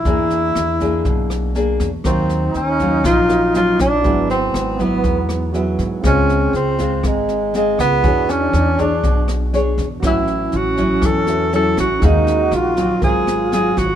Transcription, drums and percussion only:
0.05 kick, snare
0.30 snare
0.55 cross-stick, snare
0.80 kick, snare
1.05 kick, snare
1.30 cross-stick, snare
1.55 snare
1.80 kick, snare
2.04 kick, cross-stick, snare
2.29 snare
2.54 snare
2.79 kick, snare
3.04 kick, cross-stick, snare
3.29 snare
3.54 snare
3.79 kick, cross-stick, snare
4.04 kick, snare
4.30 snare
4.54 cross-stick, snare
4.79 kick, snare
5.04 kick, snare
5.29 cross-stick, snare
5.54 snare
5.79 kick, snare
6.04 kick, cross-stick, snare
6.29 snare
6.54 snare
6.79 kick, snare
7.03 kick, cross-stick, snare
7.29 snare
7.54 snare
7.79 kick, cross-stick, snare
8.04 kick, snare
8.29 snare
8.53 cross-stick, snare
8.79 kick, snare
9.04 kick, snare
9.28 cross-stick, snare
9.54 snare
9.78 kick, snare
10.03 kick, cross-stick, snare
10.27 snare
10.52 snare
10.77 kick, snare
11.02 kick, cross-stick, snare
11.27 snare
11.53 snare
11.77 kick, cross-stick, snare
12.02 kick, snare
12.27 snare
12.52 cross-stick, snare
12.77 kick, snare
13.02 kick, snare
13.27 cross-stick, snare
13.52 snare
13.77 kick, snare

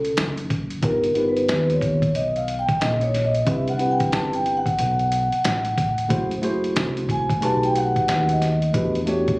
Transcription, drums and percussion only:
0.05 closed hi-hat
0.17 snare, closed hi-hat
0.37 closed hi-hat
0.50 kick, closed hi-hat
0.70 closed hi-hat
0.83 kick, closed hi-hat
1.04 closed hi-hat
1.15 closed hi-hat
1.37 closed hi-hat
1.49 snare, closed hi-hat
1.70 closed hi-hat
1.81 kick, closed hi-hat
2.02 kick, closed hi-hat
2.15 closed hi-hat
2.36 closed hi-hat
2.48 closed hi-hat
2.69 kick, closed hi-hat
2.81 snare, closed hi-hat
3.01 closed hi-hat
3.14 snare, closed hi-hat
3.35 closed hi-hat
3.47 kick, closed hi-hat
3.68 closed hi-hat
3.79 closed hi-hat
4.00 kick, closed hi-hat
4.12 snare, closed hi-hat
4.33 closed hi-hat
4.46 closed hi-hat
4.66 kick, closed hi-hat
4.79 closed hi-hat
4.99 closed hi-hat
5.12 closed hi-hat
5.32 closed hi-hat
5.44 snare, closed hi-hat
5.65 closed hi-hat
5.78 kick, closed hi-hat
5.98 closed hi-hat
6.10 kick, closed hi-hat
6.31 closed hi-hat
6.43 closed hi-hat
6.64 closed hi-hat
6.76 snare, closed hi-hat
6.97 closed hi-hat
7.09 kick, closed hi-hat
7.30 kick, closed hi-hat
7.42 closed hi-hat
7.63 closed hi-hat
7.76 closed hi-hat
7.96 kick, closed hi-hat
8.08 snare, closed hi-hat
8.29 closed hi-hat
8.42 snare, closed hi-hat
8.62 closed hi-hat
8.74 kick, closed hi-hat
8.95 closed hi-hat
9.07 closed hi-hat
9.28 kick, closed hi-hat

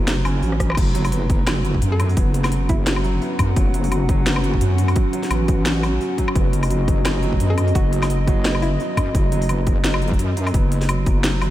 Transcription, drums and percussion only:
0.08 snare, closed hi-hat
0.25 open hi-hat, low woodblock
0.42 open hi-hat
0.52 cross-stick
0.60 kick, cross-stick, closed hi-hat
0.70 cross-stick, low woodblock
0.72 low woodblock
0.75 kick, closed hi-hat, crash, low woodblock
0.95 closed hi-hat
1.05 open hi-hat, low woodblock
1.12 closed hi-hat
1.30 kick, closed hi-hat
1.47 snare, closed hi-hat, low woodblock
1.65 closed hi-hat
1.74 kick
1.82 closed hi-hat
2.00 closed hi-hat, low woodblock
2.09 open hi-hat
2.17 kick, closed hi-hat
2.34 closed hi-hat
2.44 snare, open hi-hat, low woodblock
2.52 closed hi-hat
2.69 kick, closed hi-hat
2.87 snare, closed hi-hat
2.96 low woodblock
3.04 open hi-hat
3.22 open hi-hat
3.39 kick, closed hi-hat, low woodblock
3.56 kick, closed hi-hat
3.74 closed hi-hat
3.84 open hi-hat
3.92 closed hi-hat, low woodblock
4.09 kick, closed hi-hat
4.27 snare, closed hi-hat
4.36 low woodblock
4.44 closed hi-hat
4.54 kick
4.61 closed hi-hat
4.78 closed hi-hat
4.88 open hi-hat, low woodblock
4.96 kick, closed hi-hat
5.13 closed hi-hat
5.23 snare, open hi-hat
5.31 closed hi-hat, low woodblock
5.48 kick, closed hi-hat
5.66 snare, closed hi-hat
5.83 open hi-hat, low woodblock
6.01 open hi-hat
6.18 kick, closed hi-hat
6.28 low woodblock
6.36 kick, closed hi-hat
6.53 closed hi-hat
6.63 open hi-hat, low woodblock
6.71 closed hi-hat
6.88 kick, closed hi-hat
7.05 snare, closed hi-hat, low woodblock
7.23 closed hi-hat
7.33 kick
7.40 closed hi-hat
7.58 closed hi-hat, low woodblock
7.68 open hi-hat
7.75 kick, closed hi-hat
7.93 closed hi-hat
8.02 snare, open hi-hat, low woodblock
8.10 closed hi-hat
8.27 kick, closed hi-hat
8.45 snare, closed hi-hat
8.55 low woodblock
8.62 open hi-hat
8.80 open hi-hat
8.97 kick, closed hi-hat, low woodblock
9.15 kick, closed hi-hat
9.32 closed hi-hat
9.42 open hi-hat
9.49 closed hi-hat, low woodblock
9.67 kick, closed hi-hat
9.84 snare, closed hi-hat
9.94 low woodblock
10.02 closed hi-hat
10.08 kick, closed hi-hat
10.14 closed hi-hat
10.19 closed hi-hat
10.37 closed hi-hat
10.47 open hi-hat, low woodblock
10.54 kick, closed hi-hat
10.72 closed hi-hat
10.81 snare, open hi-hat
10.89 closed hi-hat, low woodblock
11.06 kick, closed hi-hat
11.24 snare, closed hi-hat
11.42 open hi-hat, low woodblock

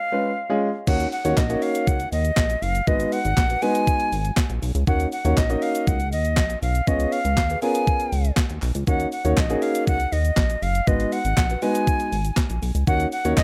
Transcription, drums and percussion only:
0.87 kick, crash, shaker
1.00 closed hi-hat, shaker
1.12 open hi-hat, shaker
1.25 closed hi-hat, shaker
1.37 kick, snare, clap, shaker
1.50 closed hi-hat, shaker
1.62 open hi-hat, shaker
1.75 closed hi-hat, shaker
1.87 kick, shaker
2.00 closed hi-hat, shaker
2.12 open hi-hat, shaker
2.25 closed hi-hat, shaker
2.36 kick, snare, clap, shaker
2.50 closed hi-hat, shaker
2.63 open hi-hat, shaker
2.75 closed hi-hat, shaker
2.87 kick, shaker
3.00 closed hi-hat, shaker
3.12 open hi-hat, shaker
3.25 closed hi-hat, shaker
3.37 kick, snare, clap, shaker
3.50 closed hi-hat, shaker
3.62 open hi-hat, shaker
3.75 closed hi-hat, shaker
3.87 kick, shaker
4.00 closed hi-hat, shaker
4.12 open hi-hat, shaker
4.25 closed hi-hat, shaker
4.36 kick, snare, clap, shaker
4.50 closed hi-hat, shaker
4.63 open hi-hat, shaker
4.75 closed hi-hat, shaker
4.87 kick, shaker
5.00 closed hi-hat, shaker
5.12 open hi-hat, shaker
5.25 closed hi-hat, shaker
5.37 kick, snare, clap, shaker
5.50 closed hi-hat, shaker
5.62 open hi-hat, shaker
5.75 closed hi-hat, shaker
5.87 kick, shaker
6.00 closed hi-hat, shaker
6.13 open hi-hat, shaker
6.25 closed hi-hat, shaker
6.36 kick, snare, clap, shaker
6.50 closed hi-hat, shaker
6.63 open hi-hat, shaker
6.75 closed hi-hat, shaker
6.87 kick, shaker
7.00 closed hi-hat, shaker
7.12 open hi-hat, shaker
7.25 closed hi-hat, shaker
7.37 kick, snare, clap, shaker
7.50 closed hi-hat, shaker
7.62 open hi-hat, shaker
7.75 closed hi-hat, shaker
7.87 kick, shaker
8.00 closed hi-hat, shaker
8.12 open hi-hat, shaker
8.25 closed hi-hat, shaker
8.36 kick, snare, clap, shaker
8.50 closed hi-hat, shaker
8.62 clap, open hi-hat, shaker
8.75 closed hi-hat, shaker
8.87 kick, shaker
9.00 closed hi-hat, shaker
9.12 open hi-hat, shaker
9.25 closed hi-hat, shaker
9.37 kick, snare, clap, shaker
9.50 closed hi-hat, shaker
9.62 open hi-hat, shaker
9.75 closed hi-hat, shaker
9.87 kick, shaker
10.00 closed hi-hat, shaker
10.13 open hi-hat, shaker
10.25 closed hi-hat, shaker
10.36 kick, snare, clap, shaker
10.50 closed hi-hat, shaker
10.63 open hi-hat, shaker
10.75 closed hi-hat, shaker
10.87 kick, shaker
11.00 closed hi-hat, shaker
11.12 open hi-hat, shaker
11.25 closed hi-hat, shaker
11.37 kick, snare, clap, shaker
11.50 closed hi-hat, shaker
11.62 open hi-hat, shaker
11.75 closed hi-hat, shaker
11.87 kick, shaker
12.00 closed hi-hat, shaker
12.12 open hi-hat, shaker
12.25 closed hi-hat, shaker
12.36 kick, snare, clap, shaker
12.50 closed hi-hat, shaker
12.63 open hi-hat, shaker
12.75 closed hi-hat, shaker
12.87 kick, shaker
13.00 closed hi-hat, shaker
13.12 open hi-hat, shaker
13.25 closed hi-hat, shaker
13.37 kick, snare, clap, shaker

